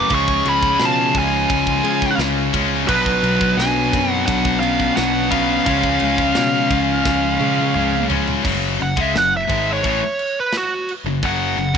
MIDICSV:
0, 0, Header, 1, 8, 480
1, 0, Start_track
1, 0, Tempo, 695249
1, 77, Time_signature, 4, 2, 24, 8
1, 8132, End_track
2, 0, Start_track
2, 0, Title_t, "Lead electric guitar"
2, 0, Program_c, 0, 29
2, 0, Note_on_c, 0, 86, 104
2, 93, Note_off_c, 0, 86, 0
2, 101, Note_on_c, 0, 85, 105
2, 335, Note_off_c, 0, 85, 0
2, 338, Note_on_c, 0, 83, 93
2, 574, Note_off_c, 0, 83, 0
2, 589, Note_on_c, 0, 81, 97
2, 816, Note_off_c, 0, 81, 0
2, 818, Note_on_c, 0, 80, 99
2, 1500, Note_off_c, 0, 80, 0
2, 1992, Note_on_c, 0, 71, 97
2, 2468, Note_on_c, 0, 80, 113
2, 2490, Note_off_c, 0, 71, 0
2, 2840, Note_off_c, 0, 80, 0
2, 2840, Note_on_c, 0, 78, 113
2, 2942, Note_off_c, 0, 78, 0
2, 2945, Note_on_c, 0, 78, 114
2, 3171, Note_off_c, 0, 78, 0
2, 3174, Note_on_c, 0, 77, 101
2, 3423, Note_off_c, 0, 77, 0
2, 3426, Note_on_c, 0, 78, 100
2, 3666, Note_off_c, 0, 78, 0
2, 3669, Note_on_c, 0, 77, 95
2, 5568, Note_off_c, 0, 77, 0
2, 6092, Note_on_c, 0, 78, 91
2, 6220, Note_off_c, 0, 78, 0
2, 6220, Note_on_c, 0, 76, 85
2, 6333, Note_off_c, 0, 76, 0
2, 6333, Note_on_c, 0, 78, 92
2, 6444, Note_off_c, 0, 78, 0
2, 6468, Note_on_c, 0, 76, 76
2, 6688, Note_off_c, 0, 76, 0
2, 6716, Note_on_c, 0, 73, 80
2, 7165, Note_off_c, 0, 73, 0
2, 7180, Note_on_c, 0, 71, 73
2, 7288, Note_off_c, 0, 71, 0
2, 7300, Note_on_c, 0, 66, 83
2, 7524, Note_off_c, 0, 66, 0
2, 7771, Note_on_c, 0, 78, 101
2, 8132, Note_off_c, 0, 78, 0
2, 8132, End_track
3, 0, Start_track
3, 0, Title_t, "Lead electric guitar"
3, 0, Program_c, 1, 29
3, 0, Note_on_c, 1, 71, 79
3, 80, Note_off_c, 1, 71, 0
3, 84, Note_on_c, 1, 68, 83
3, 304, Note_off_c, 1, 68, 0
3, 320, Note_on_c, 1, 68, 81
3, 542, Note_off_c, 1, 68, 0
3, 582, Note_on_c, 1, 65, 67
3, 794, Note_off_c, 1, 65, 0
3, 826, Note_on_c, 1, 65, 81
3, 1504, Note_off_c, 1, 65, 0
3, 1990, Note_on_c, 1, 54, 74
3, 2446, Note_off_c, 1, 54, 0
3, 2478, Note_on_c, 1, 62, 93
3, 2816, Note_off_c, 1, 62, 0
3, 2816, Note_on_c, 1, 60, 93
3, 2931, Note_off_c, 1, 60, 0
3, 2951, Note_on_c, 1, 62, 91
3, 3177, Note_off_c, 1, 62, 0
3, 3185, Note_on_c, 1, 61, 85
3, 3414, Note_off_c, 1, 61, 0
3, 3432, Note_on_c, 1, 62, 79
3, 3658, Note_off_c, 1, 62, 0
3, 3665, Note_on_c, 1, 61, 87
3, 5566, Note_off_c, 1, 61, 0
3, 8132, End_track
4, 0, Start_track
4, 0, Title_t, "Distorted electric guitar"
4, 0, Program_c, 2, 30
4, 0, Note_on_c, 2, 42, 63
4, 0, Note_on_c, 2, 61, 91
4, 73, Note_off_c, 2, 42, 0
4, 94, Note_off_c, 2, 61, 0
4, 1746, Note_on_c, 2, 61, 94
4, 1759, Note_on_c, 2, 56, 82
4, 1774, Note_on_c, 2, 49, 73
4, 1971, Note_off_c, 2, 49, 0
4, 1977, Note_off_c, 2, 61, 0
4, 1984, Note_off_c, 2, 56, 0
4, 3662, Note_on_c, 2, 59, 93
4, 3680, Note_on_c, 2, 54, 83
4, 3691, Note_on_c, 2, 47, 71
4, 3896, Note_off_c, 2, 59, 0
4, 3900, Note_off_c, 2, 47, 0
4, 3905, Note_off_c, 2, 54, 0
4, 5588, Note_on_c, 2, 61, 100
4, 5599, Note_on_c, 2, 56, 80
4, 5616, Note_on_c, 2, 49, 76
4, 5820, Note_off_c, 2, 61, 0
4, 5822, Note_off_c, 2, 49, 0
4, 5826, Note_off_c, 2, 56, 0
4, 8132, End_track
5, 0, Start_track
5, 0, Title_t, "Distorted electric guitar"
5, 0, Program_c, 3, 30
5, 0, Note_on_c, 3, 61, 87
5, 69, Note_off_c, 3, 61, 0
5, 80, Note_on_c, 3, 53, 90
5, 1264, Note_off_c, 3, 53, 0
5, 1278, Note_on_c, 3, 53, 69
5, 1503, Note_off_c, 3, 53, 0
5, 1523, Note_on_c, 3, 53, 78
5, 1986, Note_off_c, 3, 53, 0
5, 2004, Note_on_c, 3, 62, 107
5, 3183, Note_off_c, 3, 62, 0
5, 3192, Note_on_c, 3, 62, 92
5, 3421, Note_off_c, 3, 62, 0
5, 3442, Note_on_c, 3, 62, 92
5, 3906, Note_off_c, 3, 62, 0
5, 3915, Note_on_c, 3, 53, 108
5, 5104, Note_off_c, 3, 53, 0
5, 5114, Note_on_c, 3, 53, 78
5, 5343, Note_off_c, 3, 53, 0
5, 5354, Note_on_c, 3, 53, 90
5, 5823, Note_off_c, 3, 53, 0
5, 8132, End_track
6, 0, Start_track
6, 0, Title_t, "Distorted electric guitar"
6, 0, Program_c, 4, 30
6, 0, Note_on_c, 4, 54, 88
6, 0, Note_on_c, 4, 61, 88
6, 69, Note_off_c, 4, 54, 0
6, 70, Note_on_c, 4, 49, 78
6, 86, Note_on_c, 4, 56, 97
6, 96, Note_off_c, 4, 61, 0
6, 98, Note_on_c, 4, 61, 89
6, 1256, Note_off_c, 4, 61, 0
6, 1259, Note_off_c, 4, 49, 0
6, 1264, Note_on_c, 4, 61, 94
6, 1267, Note_off_c, 4, 56, 0
6, 1277, Note_on_c, 4, 56, 90
6, 1288, Note_on_c, 4, 49, 71
6, 1492, Note_off_c, 4, 49, 0
6, 1496, Note_off_c, 4, 61, 0
6, 1501, Note_on_c, 4, 49, 90
6, 1503, Note_off_c, 4, 56, 0
6, 1516, Note_on_c, 4, 56, 85
6, 1522, Note_on_c, 4, 61, 96
6, 1975, Note_off_c, 4, 49, 0
6, 1983, Note_off_c, 4, 56, 0
6, 1986, Note_off_c, 4, 61, 0
6, 1986, Note_on_c, 4, 47, 85
6, 1996, Note_on_c, 4, 54, 84
6, 2010, Note_on_c, 4, 59, 94
6, 3178, Note_off_c, 4, 47, 0
6, 3180, Note_off_c, 4, 59, 0
6, 3183, Note_off_c, 4, 54, 0
6, 3188, Note_on_c, 4, 59, 101
6, 3201, Note_on_c, 4, 54, 86
6, 3214, Note_on_c, 4, 47, 80
6, 3419, Note_off_c, 4, 59, 0
6, 3421, Note_off_c, 4, 47, 0
6, 3425, Note_off_c, 4, 54, 0
6, 3429, Note_on_c, 4, 47, 84
6, 3439, Note_on_c, 4, 54, 91
6, 3449, Note_on_c, 4, 59, 78
6, 3900, Note_off_c, 4, 47, 0
6, 3903, Note_on_c, 4, 49, 81
6, 3905, Note_off_c, 4, 54, 0
6, 3910, Note_off_c, 4, 59, 0
6, 3918, Note_on_c, 4, 56, 92
6, 3929, Note_on_c, 4, 61, 91
6, 5095, Note_off_c, 4, 61, 0
6, 5098, Note_off_c, 4, 49, 0
6, 5103, Note_on_c, 4, 61, 92
6, 5105, Note_off_c, 4, 56, 0
6, 5118, Note_on_c, 4, 56, 89
6, 5128, Note_on_c, 4, 49, 77
6, 5337, Note_off_c, 4, 61, 0
6, 5340, Note_off_c, 4, 49, 0
6, 5345, Note_off_c, 4, 56, 0
6, 5349, Note_on_c, 4, 49, 80
6, 5364, Note_on_c, 4, 56, 78
6, 5371, Note_on_c, 4, 61, 83
6, 5821, Note_off_c, 4, 49, 0
6, 5828, Note_off_c, 4, 56, 0
6, 5832, Note_off_c, 4, 61, 0
6, 5840, Note_on_c, 4, 42, 94
6, 5845, Note_on_c, 4, 49, 87
6, 5847, Note_on_c, 4, 54, 87
6, 6069, Note_off_c, 4, 49, 0
6, 6073, Note_off_c, 4, 42, 0
6, 6077, Note_off_c, 4, 54, 0
6, 6078, Note_on_c, 4, 49, 71
6, 6081, Note_on_c, 4, 42, 69
6, 6196, Note_off_c, 4, 49, 0
6, 6201, Note_off_c, 4, 42, 0
6, 6205, Note_on_c, 4, 49, 94
6, 6210, Note_on_c, 4, 56, 110
6, 6316, Note_off_c, 4, 49, 0
6, 6319, Note_off_c, 4, 56, 0
6, 6326, Note_on_c, 4, 42, 64
6, 6331, Note_on_c, 4, 49, 73
6, 6516, Note_off_c, 4, 42, 0
6, 6518, Note_off_c, 4, 49, 0
6, 6560, Note_on_c, 4, 44, 99
6, 6561, Note_on_c, 4, 51, 92
6, 6570, Note_on_c, 4, 56, 108
6, 6794, Note_off_c, 4, 44, 0
6, 6794, Note_off_c, 4, 51, 0
6, 6798, Note_on_c, 4, 45, 92
6, 6799, Note_off_c, 4, 56, 0
6, 6804, Note_on_c, 4, 52, 107
6, 6913, Note_off_c, 4, 45, 0
6, 6916, Note_off_c, 4, 52, 0
6, 7637, Note_on_c, 4, 42, 68
6, 7638, Note_on_c, 4, 49, 78
6, 7745, Note_off_c, 4, 42, 0
6, 7750, Note_off_c, 4, 49, 0
6, 7754, Note_on_c, 4, 42, 84
6, 7758, Note_on_c, 4, 49, 99
6, 7759, Note_on_c, 4, 54, 90
6, 7990, Note_off_c, 4, 42, 0
6, 7992, Note_off_c, 4, 49, 0
6, 7993, Note_off_c, 4, 54, 0
6, 7997, Note_on_c, 4, 42, 69
6, 8000, Note_on_c, 4, 49, 69
6, 8096, Note_off_c, 4, 49, 0
6, 8105, Note_on_c, 4, 49, 77
6, 8119, Note_off_c, 4, 42, 0
6, 8132, Note_off_c, 4, 49, 0
6, 8132, End_track
7, 0, Start_track
7, 0, Title_t, "Picked electric bass"
7, 0, Program_c, 5, 34
7, 72, Note_on_c, 5, 37, 96
7, 285, Note_off_c, 5, 37, 0
7, 316, Note_on_c, 5, 37, 100
7, 527, Note_off_c, 5, 37, 0
7, 556, Note_on_c, 5, 47, 98
7, 767, Note_off_c, 5, 47, 0
7, 792, Note_on_c, 5, 37, 98
7, 1005, Note_off_c, 5, 37, 0
7, 1034, Note_on_c, 5, 37, 99
7, 1246, Note_off_c, 5, 37, 0
7, 1269, Note_on_c, 5, 49, 86
7, 1483, Note_off_c, 5, 49, 0
7, 1508, Note_on_c, 5, 37, 108
7, 1723, Note_off_c, 5, 37, 0
7, 1755, Note_on_c, 5, 37, 96
7, 1967, Note_off_c, 5, 37, 0
7, 1992, Note_on_c, 5, 35, 91
7, 2205, Note_off_c, 5, 35, 0
7, 2230, Note_on_c, 5, 35, 97
7, 2444, Note_off_c, 5, 35, 0
7, 2468, Note_on_c, 5, 35, 96
7, 2683, Note_off_c, 5, 35, 0
7, 2714, Note_on_c, 5, 42, 89
7, 2927, Note_off_c, 5, 42, 0
7, 2953, Note_on_c, 5, 35, 97
7, 3377, Note_off_c, 5, 35, 0
7, 3437, Note_on_c, 5, 35, 94
7, 3859, Note_off_c, 5, 35, 0
7, 3910, Note_on_c, 5, 37, 100
7, 4125, Note_off_c, 5, 37, 0
7, 4161, Note_on_c, 5, 37, 94
7, 4371, Note_off_c, 5, 37, 0
7, 4400, Note_on_c, 5, 47, 84
7, 4611, Note_off_c, 5, 47, 0
7, 4629, Note_on_c, 5, 37, 100
7, 4844, Note_off_c, 5, 37, 0
7, 4869, Note_on_c, 5, 37, 93
7, 5084, Note_off_c, 5, 37, 0
7, 5112, Note_on_c, 5, 49, 83
7, 5326, Note_off_c, 5, 49, 0
7, 5354, Note_on_c, 5, 37, 95
7, 5568, Note_off_c, 5, 37, 0
7, 5594, Note_on_c, 5, 37, 88
7, 5808, Note_off_c, 5, 37, 0
7, 5832, Note_on_c, 5, 30, 92
7, 6060, Note_off_c, 5, 30, 0
7, 6082, Note_on_c, 5, 30, 85
7, 6193, Note_off_c, 5, 30, 0
7, 6198, Note_on_c, 5, 37, 104
7, 6309, Note_off_c, 5, 37, 0
7, 6313, Note_on_c, 5, 30, 81
7, 6540, Note_off_c, 5, 30, 0
7, 6554, Note_on_c, 5, 32, 90
7, 6781, Note_off_c, 5, 32, 0
7, 6797, Note_on_c, 5, 33, 88
7, 6911, Note_off_c, 5, 33, 0
7, 7625, Note_on_c, 5, 30, 86
7, 7744, Note_off_c, 5, 30, 0
7, 7753, Note_on_c, 5, 30, 95
7, 7980, Note_off_c, 5, 30, 0
7, 7989, Note_on_c, 5, 30, 82
7, 8102, Note_off_c, 5, 30, 0
7, 8107, Note_on_c, 5, 37, 103
7, 8132, Note_off_c, 5, 37, 0
7, 8132, End_track
8, 0, Start_track
8, 0, Title_t, "Drums"
8, 68, Note_on_c, 9, 51, 97
8, 72, Note_on_c, 9, 36, 112
8, 137, Note_off_c, 9, 51, 0
8, 141, Note_off_c, 9, 36, 0
8, 192, Note_on_c, 9, 36, 92
8, 262, Note_off_c, 9, 36, 0
8, 314, Note_on_c, 9, 51, 76
8, 383, Note_off_c, 9, 51, 0
8, 432, Note_on_c, 9, 36, 91
8, 501, Note_off_c, 9, 36, 0
8, 549, Note_on_c, 9, 38, 106
8, 549, Note_on_c, 9, 51, 100
8, 618, Note_off_c, 9, 38, 0
8, 618, Note_off_c, 9, 51, 0
8, 791, Note_on_c, 9, 51, 69
8, 793, Note_on_c, 9, 36, 101
8, 860, Note_off_c, 9, 51, 0
8, 862, Note_off_c, 9, 36, 0
8, 1034, Note_on_c, 9, 36, 125
8, 1036, Note_on_c, 9, 51, 95
8, 1103, Note_off_c, 9, 36, 0
8, 1105, Note_off_c, 9, 51, 0
8, 1152, Note_on_c, 9, 36, 93
8, 1221, Note_off_c, 9, 36, 0
8, 1274, Note_on_c, 9, 51, 72
8, 1343, Note_off_c, 9, 51, 0
8, 1395, Note_on_c, 9, 36, 89
8, 1464, Note_off_c, 9, 36, 0
8, 1515, Note_on_c, 9, 38, 103
8, 1515, Note_on_c, 9, 51, 100
8, 1584, Note_off_c, 9, 38, 0
8, 1584, Note_off_c, 9, 51, 0
8, 1753, Note_on_c, 9, 36, 92
8, 1755, Note_on_c, 9, 51, 94
8, 1822, Note_off_c, 9, 36, 0
8, 1824, Note_off_c, 9, 51, 0
8, 1993, Note_on_c, 9, 36, 105
8, 1996, Note_on_c, 9, 49, 105
8, 2063, Note_off_c, 9, 36, 0
8, 2065, Note_off_c, 9, 49, 0
8, 2113, Note_on_c, 9, 36, 96
8, 2182, Note_off_c, 9, 36, 0
8, 2234, Note_on_c, 9, 51, 77
8, 2303, Note_off_c, 9, 51, 0
8, 2353, Note_on_c, 9, 36, 101
8, 2422, Note_off_c, 9, 36, 0
8, 2483, Note_on_c, 9, 38, 109
8, 2483, Note_on_c, 9, 51, 108
8, 2552, Note_off_c, 9, 38, 0
8, 2552, Note_off_c, 9, 51, 0
8, 2716, Note_on_c, 9, 36, 91
8, 2719, Note_on_c, 9, 51, 86
8, 2785, Note_off_c, 9, 36, 0
8, 2788, Note_off_c, 9, 51, 0
8, 2953, Note_on_c, 9, 36, 118
8, 2958, Note_on_c, 9, 51, 101
8, 3022, Note_off_c, 9, 36, 0
8, 3027, Note_off_c, 9, 51, 0
8, 3073, Note_on_c, 9, 36, 98
8, 3142, Note_off_c, 9, 36, 0
8, 3193, Note_on_c, 9, 51, 87
8, 3262, Note_off_c, 9, 51, 0
8, 3311, Note_on_c, 9, 36, 84
8, 3380, Note_off_c, 9, 36, 0
8, 3430, Note_on_c, 9, 38, 105
8, 3430, Note_on_c, 9, 51, 104
8, 3500, Note_off_c, 9, 38, 0
8, 3500, Note_off_c, 9, 51, 0
8, 3668, Note_on_c, 9, 51, 83
8, 3671, Note_on_c, 9, 36, 92
8, 3737, Note_off_c, 9, 51, 0
8, 3740, Note_off_c, 9, 36, 0
8, 3909, Note_on_c, 9, 51, 101
8, 3910, Note_on_c, 9, 36, 115
8, 3978, Note_off_c, 9, 51, 0
8, 3979, Note_off_c, 9, 36, 0
8, 4028, Note_on_c, 9, 36, 90
8, 4097, Note_off_c, 9, 36, 0
8, 4141, Note_on_c, 9, 51, 82
8, 4210, Note_off_c, 9, 51, 0
8, 4268, Note_on_c, 9, 36, 93
8, 4337, Note_off_c, 9, 36, 0
8, 4385, Note_on_c, 9, 38, 123
8, 4385, Note_on_c, 9, 51, 105
8, 4454, Note_off_c, 9, 38, 0
8, 4454, Note_off_c, 9, 51, 0
8, 4629, Note_on_c, 9, 51, 80
8, 4630, Note_on_c, 9, 36, 95
8, 4698, Note_off_c, 9, 51, 0
8, 4699, Note_off_c, 9, 36, 0
8, 4870, Note_on_c, 9, 38, 67
8, 4871, Note_on_c, 9, 36, 107
8, 4939, Note_off_c, 9, 38, 0
8, 4940, Note_off_c, 9, 36, 0
8, 5113, Note_on_c, 9, 48, 78
8, 5182, Note_off_c, 9, 48, 0
8, 5233, Note_on_c, 9, 48, 63
8, 5302, Note_off_c, 9, 48, 0
8, 5345, Note_on_c, 9, 47, 78
8, 5414, Note_off_c, 9, 47, 0
8, 5591, Note_on_c, 9, 43, 113
8, 5660, Note_off_c, 9, 43, 0
8, 5713, Note_on_c, 9, 43, 105
8, 5783, Note_off_c, 9, 43, 0
8, 5832, Note_on_c, 9, 36, 106
8, 5834, Note_on_c, 9, 49, 74
8, 5834, Note_on_c, 9, 57, 108
8, 5901, Note_off_c, 9, 36, 0
8, 5903, Note_off_c, 9, 49, 0
8, 5903, Note_off_c, 9, 57, 0
8, 6081, Note_on_c, 9, 49, 61
8, 6150, Note_off_c, 9, 49, 0
8, 6193, Note_on_c, 9, 36, 113
8, 6262, Note_off_c, 9, 36, 0
8, 6321, Note_on_c, 9, 38, 108
8, 6321, Note_on_c, 9, 49, 78
8, 6390, Note_off_c, 9, 38, 0
8, 6390, Note_off_c, 9, 49, 0
8, 6556, Note_on_c, 9, 36, 109
8, 6562, Note_on_c, 9, 49, 61
8, 6625, Note_off_c, 9, 36, 0
8, 6631, Note_off_c, 9, 49, 0
8, 6795, Note_on_c, 9, 36, 96
8, 6800, Note_on_c, 9, 49, 84
8, 6864, Note_off_c, 9, 36, 0
8, 6869, Note_off_c, 9, 49, 0
8, 7035, Note_on_c, 9, 49, 70
8, 7104, Note_off_c, 9, 49, 0
8, 7267, Note_on_c, 9, 38, 105
8, 7267, Note_on_c, 9, 49, 70
8, 7336, Note_off_c, 9, 38, 0
8, 7336, Note_off_c, 9, 49, 0
8, 7516, Note_on_c, 9, 49, 65
8, 7585, Note_off_c, 9, 49, 0
8, 7751, Note_on_c, 9, 49, 81
8, 7752, Note_on_c, 9, 36, 98
8, 7820, Note_off_c, 9, 49, 0
8, 7821, Note_off_c, 9, 36, 0
8, 7994, Note_on_c, 9, 49, 57
8, 8063, Note_off_c, 9, 49, 0
8, 8110, Note_on_c, 9, 36, 121
8, 8132, Note_off_c, 9, 36, 0
8, 8132, End_track
0, 0, End_of_file